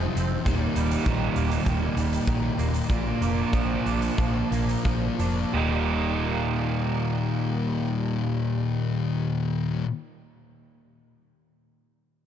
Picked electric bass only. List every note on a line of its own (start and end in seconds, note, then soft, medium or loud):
0.16 0.36 F1 medium
0.46 0.66 D#1 medium
0.76 0.96 D#1 medium
1.06 1.26 A#1 medium
1.36 1.57 D#1 medium
1.67 1.87 D#1 medium
1.96 2.17 D#1 medium
2.27 2.48 A#1 medium
2.58 2.79 D#1 medium
2.90 3.11 A#1 medium
3.21 3.43 F1 medium
3.54 3.75 A#1 medium
3.86 4.08 A#1 medium
4.18 4.41 A#1 medium
4.51 4.74 A#1 medium
4.85 5.08 A#1 medium
5.20 5.43 F1 medium
5.54 9.80 D#1 medium